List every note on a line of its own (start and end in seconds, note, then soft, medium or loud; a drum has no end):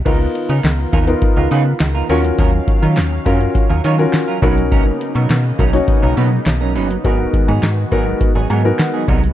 0.05 0.28 C#2 loud
0.05 4.39 D#3 medium
0.05 0.25 B3 medium
0.05 0.51 B3 medium
0.05 2.07 B3 medium
0.05 0.20 D#4 medium
0.05 0.51 D#4 medium
0.05 2.07 F4 medium
0.05 0.19 F4 medium
0.05 0.51 F4 medium
0.05 2.07 A#4 medium
0.05 0.19 A#4 medium
0.05 0.51 A#4 medium
0.05 kick loud
0.05 closed hi-hat loud
0.05 crash loud
0.20 muted clean electric guitar stroke soft
0.35 muted clean electric guitar stroke soft
0.35 closed hi-hat medium
0.49 0.61 C#3 loud
0.49 0.65 B3 medium
0.49 0.65 D#4 medium
0.49 0.65 F4 medium
0.49 0.64 A#4 medium
0.64 0.86 C#2 medium
0.64 snare loud
0.64 clap medium
0.64 closed hi-hat loud
0.78 muted clean electric guitar stroke medium
0.93 1.15 D#2 medium
0.93 1.12 B3 medium
0.93 1.07 D#4 medium
0.93 1.00 F4 medium
0.93 1.06 F4 medium
0.93 1.01 A#4 medium
0.93 1.06 A#4 medium
0.93 kick medium
0.93 closed hi-hat medium
1.07 1.68 B3 medium
1.07 1.68 D#4 medium
1.07 1.68 F4 medium
1.07 1.68 A#4 medium
1.07 muted clean electric guitar stroke medium
1.07 closed hi-hat medium
1.22 muted clean electric guitar stroke soft
1.22 kick loud
1.22 closed hi-hat medium
1.36 1.48 C#2 medium
1.36 1.50 B3 medium
1.36 1.50 D#4 medium
1.36 1.50 F4 medium
1.36 1.52 A#4 medium
1.51 1.74 C#3 loud
1.51 1.71 B3 medium
1.51 1.65 D#4 medium
1.51 1.65 F4 loud
1.51 1.65 B4 loud
1.51 closed hi-hat medium
1.66 muted clean electric guitar stroke medium
1.80 2.03 C#2 loud
1.80 muted clean electric guitar stroke soft
1.80 snare loud
1.80 clap loud
1.80 closed hi-hat medium
1.95 2.09 B3 medium
1.95 2.09 D#4 medium
1.95 2.09 F4 medium
1.95 2.10 A#4 medium
2.09 2.32 D#2 loud
2.09 2.29 F#3 medium
2.09 4.40 F#3 medium
2.09 3.03 C#4 medium
2.09 2.24 C#4 medium
2.09 4.40 C#4 medium
2.09 3.03 F4 medium
2.09 2.23 F4 loud
2.09 3.03 F#4 medium
2.09 3.03 A#4 loud
2.09 2.24 C#5 loud
2.09 4.40 F5 medium
2.09 open hi-hat medium
2.24 muted clean electric guitar stroke medium
2.24 closed hi-hat medium
2.38 2.61 D#2 loud
2.38 2.58 F#3 medium
2.38 2.53 C#4 medium
2.38 2.52 F4 medium
2.38 2.52 A#4 loud
2.38 kick loud
2.38 closed hi-hat medium
2.53 muted clean electric guitar stroke soft
2.68 muted clean electric guitar stroke soft
2.68 kick loud
2.68 closed hi-hat medium
2.82 2.99 D#3 medium
2.82 2.98 F#3 medium
2.82 2.98 C#4 medium
2.82 2.98 F4 medium
2.82 2.97 A#4 medium
2.97 3.20 D#2 loud
2.97 snare loud
2.97 clap loud
2.97 closed hi-hat loud
3.11 muted clean electric guitar stroke soft
3.26 3.48 F#2 medium
3.26 3.45 F#3 medium
3.26 3.63 C#4 medium
3.26 3.40 C#4 medium
3.26 3.63 F4 medium
3.26 3.40 F4 loud
3.26 3.64 F#4 medium
3.26 3.64 A#4 loud
3.26 3.39 A#4 medium
3.26 kick medium
3.26 closed hi-hat medium
3.40 muted clean electric guitar stroke soft
3.40 closed hi-hat medium
3.55 muted clean electric guitar stroke soft
3.55 kick loud
3.55 closed hi-hat medium
3.69 3.81 D#2 medium
3.69 3.83 F#3 medium
3.69 3.83 C#4 medium
3.69 3.84 F4 medium
3.69 3.85 A#4 medium
3.84 4.07 D#3 loud
3.84 4.04 F#3 medium
3.84 3.98 C#4 loud
3.84 3.98 F4 loud
3.84 3.98 C#5 loud
3.84 closed hi-hat medium
3.98 4.36 C#4 medium
3.98 4.36 F4 medium
3.98 4.36 F#4 medium
3.98 4.37 A#4 loud
3.98 muted clean electric guitar stroke medium
4.13 muted clean electric guitar stroke soft
4.13 snare loud
4.13 clap medium
4.13 closed hi-hat loud
4.27 4.41 F#3 medium
4.27 4.41 C#4 medium
4.27 4.42 F4 medium
4.27 4.43 A#4 medium
4.42 4.87 B1 loud
4.42 7.02 C#3 medium
4.42 4.62 F#3 loud
4.42 7.02 A#3 medium
4.42 9.33 B3 medium
4.42 5.36 C#4 medium
4.42 4.56 C#4 loud
4.42 5.36 D#4 medium
4.42 7.02 D#4 medium
4.42 4.56 D#4 loud
4.42 5.36 F#4 medium
4.42 5.36 A#4 loud
4.42 4.56 B4 loud
4.42 kick loud
4.42 open hi-hat medium
4.57 muted clean electric guitar stroke medium
4.57 closed hi-hat medium
4.71 4.91 F#3 medium
4.71 4.86 C#4 loud
4.71 4.85 D#4 medium
4.71 4.85 A#4 medium
4.71 kick loud
4.71 closed hi-hat medium
4.86 muted clean electric guitar stroke soft
5.00 muted clean electric guitar stroke soft
5.00 closed hi-hat medium
5.15 5.27 B2 loud
5.15 5.31 F#3 medium
5.15 5.31 C#4 medium
5.15 5.31 D#4 medium
5.15 5.30 A#4 medium
5.30 5.52 B2 loud
5.30 snare loud
5.30 clap medium
5.30 closed hi-hat loud
5.44 muted clean electric guitar stroke medium
5.58 5.81 B1 medium
5.58 5.78 F#3 medium
5.58 5.73 C#4 medium
5.58 5.72 D#4 loud
5.58 5.66 F#4 medium
5.58 5.67 A#4 medium
5.58 5.72 A#4 medium
5.58 kick medium
5.58 closed hi-hat medium
5.73 6.33 C#4 medium
5.73 6.34 D#4 medium
5.73 6.34 F#4 medium
5.73 6.34 C#5 loud
5.73 muted clean electric guitar stroke soft
5.73 closed hi-hat medium
5.88 muted clean electric guitar stroke soft
5.88 kick loud
5.88 closed hi-hat medium
6.02 6.14 B1 loud
6.02 6.16 F#3 medium
6.02 6.16 C#4 medium
6.02 6.16 D#4 medium
6.02 6.18 A#4 medium
6.17 6.40 B2 medium
6.17 6.37 F#3 loud
6.17 6.31 C#4 loud
6.17 6.31 D#4 loud
6.17 6.31 B4 loud
6.17 closed hi-hat medium
6.32 muted clean electric guitar stroke soft
6.46 6.77 B1 medium
6.46 muted clean electric guitar stroke soft
6.46 snare loud
6.46 clap medium
6.46 closed hi-hat medium
6.61 6.74 F#3 medium
6.61 6.74 C#4 medium
6.61 6.75 D#4 medium
6.61 6.76 A#4 medium
6.75 6.98 G1 medium
6.75 6.95 F#3 loud
6.75 6.90 C#4 medium
6.75 6.89 D#4 loud
6.75 6.90 B4 medium
6.75 open hi-hat medium
6.90 muted clean electric guitar stroke soft
6.90 closed hi-hat medium
7.04 7.27 G#1 loud
7.04 9.33 D#3 medium
7.04 7.24 F#3 medium
7.04 9.33 G#3 medium
7.04 7.50 B3 medium
7.04 7.19 B3 medium
7.04 7.50 D#4 medium
7.04 7.18 D#4 medium
7.04 9.33 F#4 medium
7.04 7.50 F#4 medium
7.04 7.18 G#4 medium
7.04 7.50 A#4 loud
7.04 kick loud
7.04 closed hi-hat medium
7.19 muted clean electric guitar stroke medium
7.33 muted clean electric guitar stroke soft
7.33 kick loud
7.33 closed hi-hat medium
7.48 7.60 G#2 loud
7.48 7.64 F#3 medium
7.48 7.64 B3 medium
7.48 7.64 D#4 medium
7.48 7.63 G#4 medium
7.63 7.85 G#2 loud
7.63 snare loud
7.63 clap medium
7.63 closed hi-hat loud
7.77 muted clean electric guitar stroke soft
7.92 8.14 G#1 loud
7.92 8.11 F#3 medium
7.92 8.29 B3 medium
7.92 8.06 B3 medium
7.92 8.29 D#4 medium
7.92 8.05 D#4 medium
7.92 8.30 F#4 medium
7.92 8.05 G#4 medium
7.92 8.30 A#4 loud
7.92 kick medium
7.92 closed hi-hat medium
8.06 muted clean electric guitar stroke medium
8.21 muted clean electric guitar stroke soft
8.21 kick loud
8.21 closed hi-hat medium
8.35 8.47 G#1 medium
8.35 8.48 F#3 medium
8.35 8.49 B3 medium
8.35 8.49 D#4 medium
8.35 8.50 G#4 medium
8.50 8.73 G#2 loud
8.50 8.69 F#3 medium
8.50 8.64 B3 medium
8.50 8.64 D#4 medium
8.50 8.64 A#4 loud
8.50 8.77 G#5 medium
8.50 closed hi-hat medium
8.64 9.02 B3 medium
8.64 9.02 D#4 medium
8.64 9.03 F#4 medium
8.64 9.03 A#4 loud
8.64 muted clean electric guitar stroke soft
8.79 9.33 F#5 medium
8.79 muted clean electric guitar stroke soft
8.79 snare loud
8.79 clap medium
8.79 closed hi-hat medium
8.94 9.07 F#3 medium
8.94 9.07 B3 medium
8.94 9.07 D#4 medium
8.94 9.09 G#4 medium
9.08 9.31 C2 loud
9.08 9.28 F#3 loud
9.08 9.22 B3 loud
9.08 9.22 D#4 loud
9.08 9.22 A#4 loud
9.08 kick medium
9.08 closed hi-hat medium
9.23 muted clean electric guitar stroke medium
9.23 closed hi-hat medium